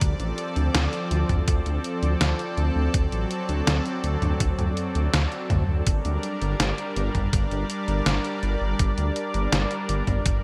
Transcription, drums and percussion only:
0.01 kick, closed hi-hat
0.20 closed hi-hat
0.38 closed hi-hat
0.56 closed hi-hat
0.75 snare, closed hi-hat
0.93 closed hi-hat
1.11 closed hi-hat
1.29 kick, closed hi-hat, mid tom
1.48 kick, closed hi-hat
1.66 closed hi-hat
1.84 closed hi-hat
2.03 closed hi-hat
2.21 snare, closed hi-hat
2.39 closed hi-hat
2.58 closed hi-hat
2.94 kick, closed hi-hat
3.12 closed hi-hat
3.31 closed hi-hat
3.49 closed hi-hat
3.67 snare, closed hi-hat
3.86 closed hi-hat
4.04 closed hi-hat
4.22 closed hi-hat, mid tom
4.40 kick, closed hi-hat
4.59 closed hi-hat, mid tom
4.77 closed hi-hat
4.95 closed hi-hat
5.14 snare, closed hi-hat
5.32 closed hi-hat
5.50 kick, closed hi-hat, mid tom
5.87 kick, closed hi-hat
6.05 closed hi-hat
6.23 closed hi-hat
6.42 closed hi-hat
6.60 snare, closed hi-hat
6.78 closed hi-hat
6.96 closed hi-hat
7.15 kick, closed hi-hat, mid tom
7.33 kick, closed hi-hat
7.51 closed hi-hat
7.70 closed hi-hat
7.88 closed hi-hat
8.06 snare, closed hi-hat
8.25 closed hi-hat
8.43 closed hi-hat
8.79 kick, closed hi-hat
8.98 closed hi-hat
9.16 closed hi-hat
9.34 closed hi-hat
9.52 snare, closed hi-hat
9.71 closed hi-hat
9.89 closed hi-hat
10.07 kick, closed hi-hat, mid tom
10.26 kick, closed hi-hat

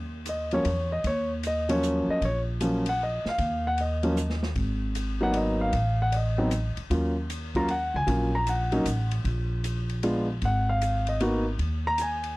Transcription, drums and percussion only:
0.26 hi-hat pedal, ride
0.51 ride
0.65 ride
1.04 kick, ride
1.43 hi-hat pedal, ride
1.69 ride
1.83 hi-hat pedal
2.22 kick, ride
2.61 hi-hat pedal, ride
2.86 ride
3.26 snare
3.38 kick, ride
3.78 ride
4.03 ride
4.17 hi-hat pedal
4.30 snare
4.43 snare
4.56 kick, ride
4.95 hi-hat pedal, ride
5.34 ride
5.73 kick, ride
6.12 ride
6.51 hi-hat pedal, ride
6.77 ride
6.90 kick, ride
7.30 hi-hat pedal, ride
7.55 kick, ride
7.68 ride
8.08 kick, ride
8.47 hi-hat pedal, ride
8.72 ride
8.86 hi-hat pedal, ride
9.11 ride
9.25 kick, ride
9.64 hi-hat pedal, ride
9.89 ride
10.03 ride
10.42 kick, ride
10.81 hi-hat pedal, ride
11.07 ride
11.20 ride
11.59 kick, ride
11.98 hi-hat pedal, ride
12.24 ride

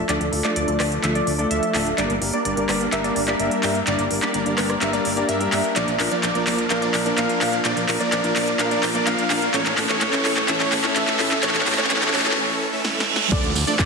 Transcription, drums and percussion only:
0.09 clap, closed hi-hat
0.21 closed hi-hat
0.33 open hi-hat
0.44 clap, closed hi-hat
0.56 closed hi-hat
0.68 closed hi-hat
0.80 cross-stick, clap, open hi-hat
0.92 closed hi-hat
1.04 clap, closed hi-hat
1.15 closed hi-hat
1.27 open hi-hat
1.39 closed hi-hat
1.51 closed hi-hat
1.63 closed hi-hat
1.75 clap, open hi-hat
1.86 closed hi-hat
1.98 clap, closed hi-hat
2.10 closed hi-hat
2.22 open hi-hat
2.33 closed hi-hat
2.45 closed hi-hat
2.57 closed hi-hat
2.69 cross-stick, clap, open hi-hat
2.81 closed hi-hat
2.92 clap, closed hi-hat
3.04 closed hi-hat
3.16 open hi-hat
3.28 clap, closed hi-hat
3.40 closed hi-hat
3.51 closed hi-hat
3.63 clap, open hi-hat
3.75 closed hi-hat
3.87 clap, closed hi-hat
3.99 closed hi-hat
4.11 open hi-hat
4.22 clap
4.34 closed hi-hat
4.46 closed hi-hat
4.58 cross-stick, clap, open hi-hat
4.70 cross-stick, closed hi-hat
4.81 clap, closed hi-hat
4.93 closed hi-hat
5.05 open hi-hat
5.17 closed hi-hat
5.29 closed hi-hat
5.41 closed hi-hat
5.52 clap, open hi-hat
5.64 closed hi-hat
5.76 clap, closed hi-hat
5.88 closed hi-hat
6.00 clap, open hi-hat
6.11 closed hi-hat
6.23 clap, closed hi-hat
6.35 closed hi-hat
6.47 clap, open hi-hat
6.59 closed hi-hat
6.70 clap, closed hi-hat
6.82 closed hi-hat
6.94 clap, open hi-hat
7.06 closed hi-hat
7.18 clap, closed hi-hat
7.29 closed hi-hat
7.41 clap, open hi-hat
7.53 closed hi-hat
7.65 clap, closed hi-hat
7.77 closed hi-hat
7.89 clap, open hi-hat
8.01 closed hi-hat
8.12 clap, closed hi-hat
8.24 closed hi-hat
8.36 clap, open hi-hat
8.48 closed hi-hat
8.59 clap, closed hi-hat
8.71 closed hi-hat
8.83 clap, open hi-hat
8.95 closed hi-hat
9.07 clap, closed hi-hat
9.19 closed hi-hat
9.30 clap, open hi-hat
9.42 closed hi-hat
9.54 clap, closed hi-hat
9.66 clap, closed hi-hat
9.78 clap, open hi-hat
9.89 clap, closed hi-hat
10.01 clap, closed hi-hat
10.13 clap, closed hi-hat
10.25 clap, open hi-hat
10.37 clap, closed hi-hat
10.48 clap, closed hi-hat
10.60 clap, closed hi-hat
10.72 clap, open hi-hat
10.84 clap, closed hi-hat
10.96 clap, closed hi-hat
11.07 clap, closed hi-hat
11.19 clap, open hi-hat
11.31 clap, closed hi-hat
11.43 clap, closed hi-hat
11.49 clap
11.55 clap, closed hi-hat
11.61 clap
11.66 clap, open hi-hat
11.72 clap
11.78 clap, closed hi-hat
11.84 clap
11.90 clap, closed hi-hat
11.96 clap
12.02 clap, closed hi-hat
12.08 clap
12.14 clap, open hi-hat
12.20 clap
12.26 clap, closed hi-hat
12.31 clap
12.85 snare
13.00 snare
13.16 snare
13.32 kick, closed hi-hat, tambourine, crash
13.44 closed hi-hat
13.55 open hi-hat, tambourine
13.67 closed hi-hat, tambourine
13.79 kick, clap, closed hi-hat, tambourine

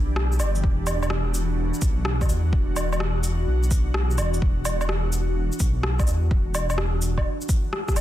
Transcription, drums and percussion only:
0.16 cross-stick
0.32 shaker
0.40 cabasa, low woodblock, shaker
0.55 cabasa
0.64 kick
0.87 cabasa, low woodblock, shaker
1.03 low woodblock, shaker
1.10 cross-stick
1.34 cabasa, shaker
1.74 shaker
1.82 kick, cabasa, shaker
2.05 cross-stick
2.21 kick, low woodblock, shaker
2.29 cabasa, shaker
2.53 kick
2.76 cabasa, low woodblock, shaker
2.93 low woodblock, shaker
3.00 cross-stick
3.24 cabasa, shaker
3.63 shaker
3.71 kick, cabasa, shaker
3.94 cross-stick
4.11 shaker
4.18 cabasa, low woodblock, shaker
4.34 cabasa
4.42 kick
4.65 cabasa, low woodblock, shaker
4.81 low woodblock, shaker
4.89 cross-stick
5.13 cabasa, shaker
5.52 shaker
5.60 kick, cabasa, shaker
5.83 cross-stick
5.99 kick, low woodblock, shaker
6.07 cabasa, shaker
6.31 kick
6.55 cabasa, low woodblock, shaker
6.70 low woodblock, shaker
6.78 cross-stick
7.02 cabasa, shaker
7.18 kick, low woodblock
7.41 shaker
7.49 kick, cabasa, shaker
7.73 cross-stick
7.88 kick, cross-stick, shaker
7.96 cabasa, low woodblock, shaker

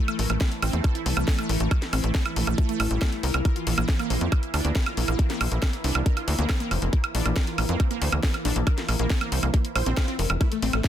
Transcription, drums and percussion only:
0.08 closed hi-hat, high woodblock
0.19 open hi-hat
0.30 closed hi-hat, high woodblock
0.41 kick, snare, closed hi-hat
0.52 closed hi-hat
0.62 open hi-hat, high woodblock
0.73 closed hi-hat
0.84 kick, closed hi-hat, high woodblock
0.95 closed hi-hat
1.06 open hi-hat
1.17 closed hi-hat, high woodblock
1.28 kick, snare, open hi-hat
1.39 closed hi-hat, high woodblock
1.49 open hi-hat
1.60 closed hi-hat
1.71 kick, closed hi-hat, high woodblock
1.82 snare, closed hi-hat
1.93 open hi-hat, high woodblock
2.04 closed hi-hat
2.15 kick, snare, closed hi-hat
2.26 closed hi-hat, high woodblock
2.36 open hi-hat
2.47 closed hi-hat, high woodblock
2.58 kick, closed hi-hat
2.69 closed hi-hat
2.80 open hi-hat, high woodblock
2.91 closed hi-hat
3.02 kick, snare, closed hi-hat, high woodblock
3.12 closed hi-hat
3.23 open hi-hat
3.34 closed hi-hat, high woodblock
3.45 kick, closed hi-hat, high woodblock
3.56 closed hi-hat
3.67 open hi-hat
3.78 closed hi-hat, high woodblock
3.89 kick, snare, closed hi-hat
3.99 closed hi-hat, high woodblock
4.10 open hi-hat
4.21 closed hi-hat
4.32 kick, closed hi-hat, high woodblock
4.43 closed hi-hat
4.54 open hi-hat, high woodblock
4.65 closed hi-hat
4.75 kick, snare, open hi-hat
4.86 closed hi-hat, high woodblock
4.97 open hi-hat
5.08 closed hi-hat, high woodblock
5.19 kick, closed hi-hat
5.30 snare, closed hi-hat
5.41 open hi-hat, high woodblock
5.52 closed hi-hat
5.62 kick, snare, closed hi-hat, high woodblock
5.73 closed hi-hat
5.84 open hi-hat
5.95 closed hi-hat, high woodblock
6.06 kick, closed hi-hat
6.17 closed hi-hat, high woodblock
6.28 open hi-hat
6.39 closed hi-hat
6.49 kick, snare, closed hi-hat, high woodblock
6.60 closed hi-hat
6.71 open hi-hat, high woodblock
6.82 closed hi-hat
6.93 kick, closed hi-hat
7.04 closed hi-hat, high woodblock
7.15 open hi-hat
7.26 closed hi-hat, high woodblock
7.36 kick, snare, closed hi-hat
7.47 closed hi-hat
7.58 open hi-hat, high woodblock
7.69 closed hi-hat
7.80 kick, closed hi-hat, high woodblock
7.91 closed hi-hat
8.02 open hi-hat
8.12 closed hi-hat, high woodblock
8.23 kick, snare, open hi-hat
8.34 closed hi-hat, high woodblock
8.45 open hi-hat
8.56 closed hi-hat
8.67 kick, closed hi-hat, high woodblock
8.78 snare, closed hi-hat
8.89 open hi-hat, high woodblock
8.99 closed hi-hat
9.10 kick, snare, closed hi-hat
9.21 closed hi-hat, high woodblock
9.32 open hi-hat
9.43 closed hi-hat, high woodblock
9.54 kick, closed hi-hat
9.65 closed hi-hat
9.76 open hi-hat, high woodblock
9.86 closed hi-hat
9.97 kick, snare, closed hi-hat, high woodblock
10.08 closed hi-hat
10.19 open hi-hat
10.30 closed hi-hat, high woodblock
10.41 kick, closed hi-hat, high woodblock
10.52 closed hi-hat
10.62 open hi-hat
10.73 closed hi-hat, high woodblock
10.84 kick, snare, closed hi-hat

